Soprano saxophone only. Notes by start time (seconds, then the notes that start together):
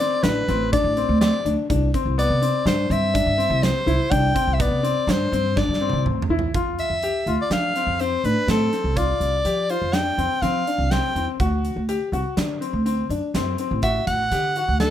Already playing: D5
0.23 B4
0.72 D5
1.21 D5
2.19 D5
2.67 C5
2.92 E5
3.63 C5
4.11 G5
4.53 E5
4.61 D5
5.10 C5
5.58 D5
6.79 E5
7.42 D5
7.52 F5
8.00 C5
8.25 B4
8.50 A4
8.97 D5
9.70 C5
9.93 G5
10.42 F5
10.91 G5
13.83 E5
14.07 F#5
14.80 A4